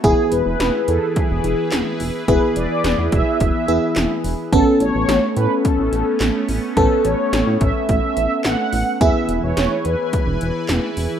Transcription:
<<
  \new Staff \with { instrumentName = "Analog polysynth" } { \time 4/4 \key e \mixolydian \tempo 4 = 107 gis'8 b'4 a'8 gis'4. r8 | b'8 d''4 e''8 e''4. r8 | a'8 cis''4 b'8 a'4. r8 | a'8 cis''4 e''8 e''4 fis''4 |
e''8. cis''8. b'2 r8 | }
  \new Staff \with { instrumentName = "Analog synth pad" } { \time 4/4 \key e \mixolydian <e e' gis' b'>1~ | <e e' gis' b'>1 | <a b cis'>1~ | <a b cis'>1 |
<e e' b' gis''>1 | }
  \new Staff \with { instrumentName = "FM electric piano" } { \time 4/4 \key e \mixolydian <b e' gis'>1 | <b e' gis'>2~ <b e' gis'>8 <b e' gis'>4. | <b cis' a'>1 | <b cis' a'>1 |
<b e' gis'>1 | }
  \new Staff \with { instrumentName = "Analog synth bass" } { \clef bass \time 4/4 \key e \mixolydian e,,16 r16 e,,16 e,,16 e,,16 r16 e,16 r8 e,,16 e,,16 r16 e,,16 r16 e,,16 r16 | e,,16 r16 e,,16 r16 e,,16 e,16 e,,16 r16 e,,16 r16 e,,16 r16 e,,16 r16 e,,16 r16 | a,,16 r16 a,,16 a,,16 a,,16 r16 a,16 r8 a,,16 a,,16 r16 a,,16 r16 a,,16 r16 | a,,16 r16 a,,16 r16 a,,16 a,16 a,,16 r16 a,,16 r16 a,,16 r16 a,,16 r16 a,,16 r16 |
e,,16 r16 e,,16 e,,16 e,,16 r16 e,16 r8 e,,16 e,,16 r16 e,,16 r16 e,,16 r16 | }
  \new DrumStaff \with { instrumentName = "Drums" } \drummode { \time 4/4 <hh bd>8 hh8 <hh sn>8 hh8 <hh bd>8 hh8 <hc hh sn>8 hho8 | <hh bd>8 hh8 <hh sn>8 <hh bd>8 <hh bd>8 hh8 <hc hh sn>8 hho8 | <hh bd>8 hh8 <hh sn>8 hh8 <hh bd>8 hh8 <hc hh sn>8 hho8 | <hh bd>8 hh8 <hh sn>8 <hh bd>8 <hh bd>8 hh8 <hc hh sn>8 hho8 |
<hh bd>8 hh8 <hh sn>8 hh8 <hh bd>8 hh8 <hc hh sn>8 hho8 | }
>>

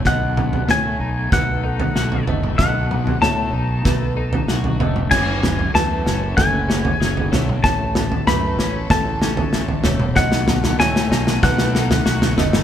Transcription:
<<
  \new Staff \with { instrumentName = "Electric slide guitar" } { \time 4/4 \key b \mixolydian \tempo 4 = 95 fis''4 gis''4 fis''4. r8 | fis''4 a''2 r4 | gis''4 a''4 gis''4. r8 | a''4 b''4 a''4. r8 |
fis''4 gis''4 fis''2 | }
  \new Staff \with { instrumentName = "Felt piano" } { \time 4/4 \key b \mixolydian dis''4 cis''4 b'8 a'4 dis''8 | dis''4 cis''4 b'8 a'4 dis''8 | cis''4 b'4 a'8 gis'4 cis''8 | cis''4 b'4 a'8 a'4 cis''8 |
dis''4 cis''4 b'8 a'4 dis''8 | }
  \new Staff \with { instrumentName = "String section" } { \time 4/4 \key b \mixolydian << { <dis a'>1~ | <dis a'>1 | <fis fis'>1 | <cis a'>1 |
<dis a'>1 | } \\ { b1~ | b1 | a1~ | a1 |
b1 | } >> }
  \new Staff \with { instrumentName = "Clean electric guitar" } { \time 4/4 \key b \mixolydian b,4 a8 dis'8 a8 dis'8 fis'8 a8 | b,4 a8 dis'8 a8 dis'8 fis'8 a8 | fis,4 a8 cis'8 a8 cis'8 gis'8 a8 | a,4 a8 cis'8 a8 cis'4 a8 |
b,4 a8 dis'8 a8 dis'8 fis'8 a8 | }
  \new Staff \with { instrumentName = "Fingered electric bass" } { \clef bass \time 4/4 \key b \mixolydian b,,4 a,8 b,,8 b,,4 b,,8 fis,,8 | b,,4 a,8 b,,8 b,,4 b,,8 eis,,8 | fis,,4 e,8 fis,,8 fis,,4 fis,,8 b,,8 | a,,4 fis,8 a,,8 a,,4 a,,8 e,,8 |
b,,4 a,8 b,,8 b,,4 b,,8 fis,,8 | }
  \new DrumStaff \with { instrumentName = "Drums" } \drummode { \time 4/4 <bd sn tomfh>8 <tomfh toml>16 tomfh16 <sn tomfh>4 <bd sn tomfh>8. tomfh16 sn16 tomfh16 tomfh16 toml16 | <bd sn tomfh>8 toml16 tomfh16 <sn tomfh>4 <bd sn tomfh>8. tomfh16 sn16 tomfh16 <tomfh toml>16 toml16 | <cymc bd sn tomfh>8 <sn tomfh toml>16 tomfh16 <sn tomfh>8 sn8 <bd sn tomfh>8 sn16 tomfh16 sn16 tomfh16 <sn tomfh>16 toml16 | <bd sn tomfh>8 <sn tomfh toml>16 tomfh16 <sn tomfh>8 sn8 <bd sn tomfh>8 sn16 tomfh16 sn16 tomfh16 <sn tomfh>16 toml16 |
<bd sn tomfh>16 sn16 <sn tomfh toml>16 <sn tomfh>16 <sn tomfh>16 sn16 sn16 sn16 <bd sn tomfh>16 sn16 sn16 <sn tomfh>16 sn16 <sn tomfh>16 <sn tomfh>16 <sn toml>16 | }
>>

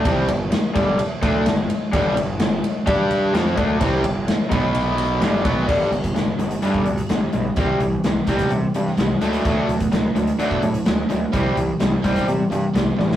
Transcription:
<<
  \new Staff \with { instrumentName = "Distorted electric guitar" } { \clef bass \time 4/4 \key g \major \tempo 4 = 128 <c g c'>8 <g, d>8 r8 <g, d g>8 r8 <d a d'>8 <g, d>8 r8 | <g, d g>8 <g, d>8 <g, d>8 r8 <g d' g'>4 <f c' f'>8 <d a d'>8 | <c g c'>8 <g, d>8 r8 <b, fis b>4. <g, d g>8 <b, fis b>8 | <g, d g>8 <g, d>8 <g, d>8 <g, d>8 <g, d g>8 <g, d>8 <g, d>8 <g, d>8 |
<c e g>8 <c e>8 <c e>8 <c e g>8 <c e>8 <c e>8 <c e>8 <d a d'>8 | <d a d'>8 <d a>8 <d a>8 <d a>8 <d a d'>8 <d a>8 <d a>8 <d a>8 | <c e g>8 <c e>8 <c e>8 <c e g>8 <c e>8 <c e>8 <c e>8 <c e>8 | }
  \new Staff \with { instrumentName = "Overdriven electric guitar" } { \clef bass \time 4/4 \key g \major <c g c'>8 <g, d>8 r8 <g, d g>8 r8 <d a d'>8 <g, d>8 r8 | <g, d g>8 <g, d>8 <g, d>8 r8 <g d' g'>4 <f c' f'>8 <d a d'>8 | <c g c'>8 <g, d>8 r8 <b, fis b>4. <g, d g>8 <b, fis b>8 | <g, d g>8 <g, d>8 <g, d>8 <g, d>8 <g, d g>8 <g, d>8 <g, d>8 <g, d>8 |
<c g c'>8 <c g>8 <c g>8 <c g c'>8 <c g>8 <c g>8 <c g>8 <d fis a>8 | <d fis a>8 <d fis>8 <d fis>8 <d fis>8 <d fis a>8 <d fis>8 <d fis>8 <d fis>8 | <c g c'>8 <c g>8 <c g>8 <c g c'>8 <c g>8 <c g>8 <c g>8 <c g>8 | }
  \new Staff \with { instrumentName = "Picked electric bass" } { \clef bass \time 4/4 \key g \major c,8 g,,8 r8 g,,8 r8 d,8 g,,8 r8 | g,,8 g,,8 g,,8 r8 g,4 f,8 d,8 | c,8 g,,8 r8 b,,4. g,,8 b,,8 | g,,8 g,,8 g,,8 g,,8 g,8 d,8 g,,8 b,,8 |
c,8 c,8 c,8 c,8 c8 g,8 c,8 d,8 | d,8 d,8 d,8 d,8 d8 a,8 d,8 d,8 | c,8 c,8 c,8 c,8 c8 g,8 c,8 a,,8 | }
  \new DrumStaff \with { instrumentName = "Drums" } \drummode { \time 4/4 <bd cymr>8 cymr8 <cymr sn>8 <bd cymr>8 cymr8 <bd cymr>8 <cymr sn>8 cymr8 | <bd cymr>8 cymr8 <cymr sn>8 cymr8 <bd cymr>8 cymr8 <cymr sn>8 <bd cymr>8 | <bd cymr>8 cymr8 <cymr sn>8 <bd cymr>8 cymr8 cymr8 <cymr sn>8 <bd cymr>8 | <cymc bd>8 hh16 <hh bd>16 <hh sn>8 hh16 hh16 hh16 bd16 hh16 hh16 <hh sn>8 hh8 |
<hh bd>8 hh8 <hh sn>8 <hh bd>16 <hh bd>16 hh8 hh16 sn16 <hh sn>8 hh16 hh16 | <hh bd>8 hh16 <hh bd>16 <hh sn>8 hh16 hh16 hh16 bd16 hh16 hh16 <hh sn>8 hh8 | <hh bd>8 hh8 <hh sn>8 <hh bd>16 <hh bd>16 hh8 hh8 <hh sn>8 sn16 sn16 | }
>>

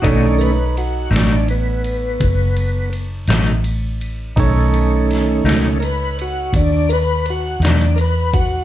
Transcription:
<<
  \new Staff \with { instrumentName = "Grand piano" } { \time 12/8 \key b \mixolydian \tempo 4. = 55 <dis' a' cis''>1. | <dis' a' cis''>1. | }
  \new Staff \with { instrumentName = "Tonewheel organ" } { \time 12/8 \key b \mixolydian <dis a cis' d'>8 <ais' b'>8 fis'8 d'8 b2 r2 | <dis a cis'>4. <dis a cis'>8 <ais' b'>8 fis'8 d'8 <ais' b'>8 fis'8 d'8 <ais' b'>8 fis'8 | }
  \new Staff \with { instrumentName = "Clean electric guitar" } { \clef bass \time 12/8 \key b \mixolydian <b, fis a dis'>8 r4 <b, fis a dis'>8 r2 r8 <b, fis a dis'>8 r4 | r4. <b, fis a dis'>8 r2 r8 <b, fis a dis'>8 r4 | }
  \new Staff \with { instrumentName = "Fingered electric bass" } { \clef bass \time 12/8 \key b \mixolydian b,,4. a,,4. fis,,4. a,,4. | b,,4. cis,4. dis,4. e,4. | }
  \new DrumStaff \with { instrumentName = "Drums" } \drummode { \time 12/8 <bd cymr>8 cymr8 cymr8 <cymr sn>8 cymr8 cymr8 <bd cymr>8 cymr8 cymr8 <cymr sn>8 cymr8 cymr8 | <bd cymr>8 cymr8 <cymr sn>8 <cymr sn>8 cymr8 cymr8 <bd cymr>8 cymr8 cymr8 <cymr sn>8 cymr8 <bd cymr>8 | }
>>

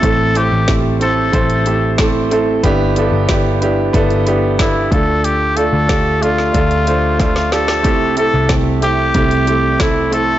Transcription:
<<
  \new Staff \with { instrumentName = "Trumpet" } { \time 4/4 \key c \major \tempo 4 = 92 a'8 g'8 r8 a'4. r4 | r2. e'8 a'8 | g'8 a'4 f'4. f'8 a'8~ | a'8 a'8 r8 g'4. e'8 a'8 | }
  \new Staff \with { instrumentName = "Upright piano" } { \time 4/4 \key c \major <a c' e' a'>8 <a c' e' c''>8 <a c' e' g'>8 <a c' e' c''>8 <a c' e' c''>8 <a c' e' g'>8 <a c' e' a'>8 <a c' e' a'>8 | <b d' e' g'>8 <b d' e' a'>8 <b d' e' g'>8 <b d' e' g'>8 <b d' e' a'>8 <b d' e' g'>8 <b d' e' a'>8 <a d' f' a'>8~ | <a d' f' a'>8 <a d' f' a'>8 <a d' f' g'>8 <a d' f' a'>8 <a d' f' a'>8 <a d' f' c''>8 <a d' f' a'>8 <a d' f' g'>8 | <a c' e' g'>8 <a c' e' a'>8 <a c' e' a'>8 <a c' e' g'>8 <a c' e' g'>8 <a c' e' g'>8 <a c' e' a'>8 <a c' e' a'>8 | }
  \new Staff \with { instrumentName = "Upright piano" } { \clef bass \time 4/4 \key c \major a,4. r2 r8 | g,4. r2 d8~ | d4 r2. | c4. r2 r8 | }
  \new Staff \with { instrumentName = "Picked electric bass" } { \clef bass \time 4/4 \key c \major a,,8. a,,4~ a,,16 a,,2 | g,,8. g,,4~ g,,16 g,,4. d,8~ | d,8. d,4~ d,16 d,2 | c,8. c,4~ c,16 c,2 | }
  \new DrumStaff \with { instrumentName = "Drums" } \drummode { \time 4/4 <hh bd>8 hh8 <hh bd sn>8 hh8 <hh bd>16 hh16 hh8 <hh bd sn>8 hh8 | <hh bd>8 hh8 <hh bd sn>8 hh8 <hh bd>16 hh16 hh8 <hh bd sn>8 <hh bd>8 | hh8 hh8 <hh bd sn>8 hh16 sn16 <hh bd>16 hh16 hh8 <hh bd sn>16 sn16 <hh sn>16 sn16 | <hh bd>8 hh8 <hh bd sn>8 hh8 <hh bd>16 hh16 hh8 <hh bd sn>8 hh8 | }
>>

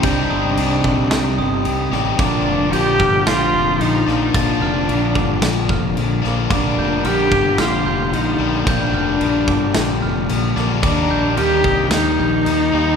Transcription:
<<
  \new Staff \with { instrumentName = "Glockenspiel" } { \time 4/4 \key g \minor \tempo 4 = 111 g'''8 ees'''4 c'''4 ees'''4 d'''8 | d'''8 a'''8 g'''8 f'''8 a'''8 a'''4 r8 | a'''8 f'''4 d'''4 f'''4 d'''8 | d'''8 g'''8 f'''8 d'''8 f'''8 g'''4 r8 |
g'''8 f'''4 d'''4 f'''4 d'''8 | d'''8 g'''8 f'''8 ees'''8 g'''8 g'''4 r8 | }
  \new Staff \with { instrumentName = "Cello" } { \time 4/4 \key g \minor d'2. r4 | d'4 g'4 f'4 ees'4 | d'2. r4 | d'4 g'4 f'4 ees'4 |
d'2. r4 | d'4 g'4 ees'2 | }
  \new Staff \with { instrumentName = "Clean electric guitar" } { \time 4/4 \key g \minor <c c' g'>8 c'4. g'8 c'8 g'8 d''8 | bes,8 f4 f'4 f4 f'8 | bes,8 f4 f'8 d'8 f8 d'8 f'8 | r1 |
r1 | r1 | }
  \new Staff \with { instrumentName = "Overdriven electric guitar" } { \clef bass \time 4/4 \key g \minor <c g c' ees' g'>2.~ <c g c' ees' g'>8 <c g c' ees' g'>8 | <bes, d f bes d'>2.~ <bes, d f bes d'>8 <bes, d f bes d'>8 | <bes, d f bes d'>2.~ <bes, d f bes d'>8 <bes, d f bes d'>8 | <bes, d g bes d'>2.~ <bes, d g bes d'>8 <bes, d g bes d'>8 |
<bes, d g bes d'>2.~ <bes, d g bes d'>8 <bes, d g bes d'>8 | <ees g bes ees'>2.~ <ees g bes ees'>8 <ees g bes ees'>8 | }
  \new Staff \with { instrumentName = "Fingered electric bass" } { \clef bass \time 4/4 \key g \minor c,8 g,,8 c,8 bes,,8 c,8 g,,8 c,8 a,,8 | bes,,8 f,,8 bes,,8 g,,8 bes,,8 f,,8 bes,,8 bes,,8 | bes,,8 f,,8 bes,,8 g,,8 bes,,8 f,,8 bes,,8 bes,,8 | bes,,8 f,,8 bes,,8 g,,8 bes,,8 f,,8 bes,,8 bes,,8 |
bes,,8 f,,8 bes,,8 g,,8 bes,,8 f,,8 bes,,8 bes,,8 | ees,8 bes,,8 ees,8 c,8 ees,8 bes,,8 ees,8 ees,8 | }
  \new DrumStaff \with { instrumentName = "Drums" } \drummode { \time 4/4 <cymc bd>4 cymc8 bd8 <cymc sn>4 cymc8 sn8 | <cymc bd>4 cymc8 bd8 <cymc sn>4 cymc8 sn8 | <cymc bd>4 cymc8 bd8 <cymc sn>8 bd8 cymc8 sn8 | <cymc bd>4 cymc8 bd8 <cymc sn>4 cymc4 |
<cymc bd>4 cymc8 bd8 <cymc sn>4 cymc8 sn8 | <cymc bd>4 cymc8 bd8 <cymc sn>4 cymc4 | }
>>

